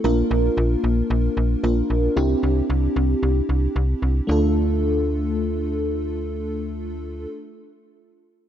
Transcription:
<<
  \new Staff \with { instrumentName = "FM electric piano" } { \time 4/4 \key d \minor \tempo 4 = 113 <bes d' f' bes'>2. <bes d' f' bes'>4 | <c' d' e' g'>1 | <a d' f' a'>1~ | <a d' f' a'>1 | }
  \new Staff \with { instrumentName = "FM bass" } { \clef bass \time 4/4 \key d \minor bes,,8 bes,,8 bes,,8 bes,,8 bes,,8 bes,,8 bes,,8 bes,,8 | c,8 c,8 c,8 c,8 c,8 c,8 c,8 c,8 | d,1~ | d,1 | }
>>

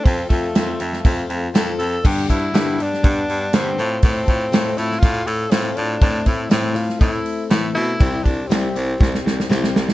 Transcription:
<<
  \new Staff \with { instrumentName = "Tenor saxophone" } { \time 4/4 \key f \lydian \tempo 4 = 121 c'8 a2~ a8 r8 a'8 | g'8 e'4 d'4. c'4 | c'4. e'8 f'8 a'8 c'8 d'8 | d'8 e'8 c'8 f'8 e'4 r8 e'8~ |
e'8 d'8 c'2 r4 | }
  \new Staff \with { instrumentName = "Steel-string acoustic guitar" } { \time 4/4 \key f \lydian <f c' f' a'>8 <c' f' a'>8 <f c' f' a'>8 <c' f' a'>8 <f c' f' a'>4 <f c' f' a'>8 <c' f' a'>8 | <g, d g b d' g'>8 <g b d' g'>8 <g, d g b d' g'>8 <g b d' g'>8 <g b d' g'>4 <g, d g b d' g'>8 <c' f' a'>8 | <a c' f' a'>8 <c' f' a'>8 <a c' f' a'>8 <c' f' a'>8 <a c' f' a'>4 <a c' f' a'>8 <c' f' a'>8 | <a, e a c' e' a'>8 <a c' e' a'>8 <a, e a c' e' a'>8 <a c' e' a'>8 <a c' e' a'>4 <a, e a c' e' a'>8 <a c' e' a'>8 |
<c g c' e' g'>8 <c' e' g'>8 <c g c' e' g'>8 <c' e' g'>8 <g c' e' g'>4 <c g c' e' g'>8 <c' e' g'>8 | }
  \new Staff \with { instrumentName = "Baritone saxophone" } { \clef bass \time 4/4 \key f \lydian f,8 f,8 f,8 f,8 f,8 f,8 f,8 f,8 | g,8 g,8 g,4 g,8 g,8 g,8 a,8 | a,8 a,8 a,8 a,8 a,8 a,8 a,8 a,8 | a,8 a,8 a,4 a,8 r8 a,8 b,8 |
c,8 c,8 c,8 c,8 c,8 c,8 c,8 c,8 | }
  \new DrumStaff \with { instrumentName = "Drums" } \drummode { \time 4/4 <hho bd>8 <hho bd>8 <hho sn>8 hho16 sn16 <hho bd>8 hho8 <hho sn>8 hho8 | <cymc bd>8 <hho bd>8 <hho sn>8 hho16 sn16 <hho bd>8 hho8 <hho sn>8 hho8 | <hho bd>8 <hho bd>8 <hho sn>8 hho16 sn16 <hho bd>8 hho8 <hho sn>8 hho8 | <hho bd>8 <hho bd>8 <hho sn>8 hho16 sn16 <hho bd>8 hho8 <hho sn>8 hho8 |
<hho bd>8 <hho bd>8 <hho sn>8 hho8 <bd sn>16 sn16 sn16 sn16 sn16 sn16 sn16 sn16 | }
>>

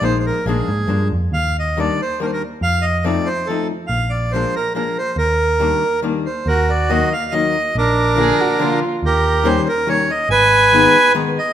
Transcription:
<<
  \new Staff \with { instrumentName = "Accordion" } { \time 3/4 \key ees \major \tempo 4 = 140 << { c''16. c''32 bes'8 aes'4. r8 | f''8 ees''8 d''8 c''8 bes'32 c''32 bes'16 r8 | f''8 ees''8 d''8 c''8 a'8 r8 | f''8 d''8 c''8 bes'8 bes'8 c''8 |
bes'2 r8 c''8 | \key ees \minor bes'8 d''8 ees''8 f''8 ees''4 | bes'2~ bes'8 r8 | bes'4 c''8 bes'8 des''8 ees''8 |
aes''2 r8 ees''8 | } \\ { r2. | r2. | r2. | r2. |
r2. | ges'4. r4. | d'2~ d'8 r8 | g'4. r4. |
ces''2 r4 | } >> }
  \new Staff \with { instrumentName = "Violin" } { \time 3/4 \key ees \major r2. | r2. | r2. | r2. |
r2. | \key ees \minor r2. | r4 aes'8 ges'8 f'8. r16 | r2. |
r2. | }
  \new Staff \with { instrumentName = "Hollow-body jazz guitar" } { \time 3/4 \key ees \major <f aes bes ees'>4 <f aes bes d'>8 r8 <f aes bes d'>8 r8 | r4 <ees g bes d'>8 r8 <ees g bes d'>8 r8 | r4 <f a c' ees'>8 r8 <f a c' ees'>8 r8 | r4 <f aes bes d'>8 r8 <f aes bes d'>8 r8 |
r4 <ees g bes d'>8 r8 <ees g bes d'>8 r8 | \key ees \minor r4 <ees ges bes ees'>8 r8 <ees ges bes ees'>8 r8 | r4 <d f bes d'>8 r8 <d f bes d'>8 r8 | r4 <ees g bes des'>8 r8 <ees g bes des'>8 r8 |
r4 <ees aes ces' ees'>8 r8 <ees aes ces' ees'>8 r8 | }
  \new Staff \with { instrumentName = "Picked electric bass" } { \clef bass \time 3/4 \key ees \major bes,,4 bes,,8 aes,8 g,8 f,8 | ees,2 r4 | f,2 r4 | bes,,2 r4 |
ees,2 r4 | \key ees \minor ees,2 r4 | bes,,2 r4 | ees,2 r4 |
aes,,2 r4 | }
>>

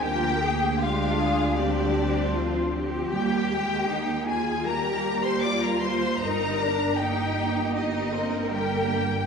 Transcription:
<<
  \new Staff \with { instrumentName = "Violin section" } { \time 4/4 \key ees \major \tempo 4 = 78 g''4 f''4 d''4. r8 | g''4. aes''8 bes''8. c'''16 d'''16 bes''16 c'''8 | bes''4 g''4 ees''4 g''4 | }
  \new Staff \with { instrumentName = "Violin section" } { \time 4/4 \key ees \major g'4 f'4 d'4. r8 | g'4. aes'8 bes'8. c''16 d''16 bes'16 c''8 | bes'4 g'4 ees'4 g'4 | }
  \new Staff \with { instrumentName = "Cello section" } { \time 4/4 \key ees \major bes'8 aes'8 g'8 aes'8 g'4 f'8 g'8~ | g'4 ees'8 f'8 g'4 f'4 | ees'8 d'8 ees'4 g'8 bes'4. | }
  \new Staff \with { instrumentName = "Viola section" } { \time 4/4 \key ees \major << { bes4 d'4 c'2 | bes2 bes2 | ees'8 d'8 ees'4 ees'8 c'8 bes4 | } \\ { f8 bes8 aes4 g4 f8 f8 | g8 aes8 bes4 g2 | g4 bes8 bes4. g4 | } >> }
  \new Staff \with { instrumentName = "Double bass section" } { \clef bass \time 4/4 \key ees \major d,1 | ees,1 | g,,1 | }
>>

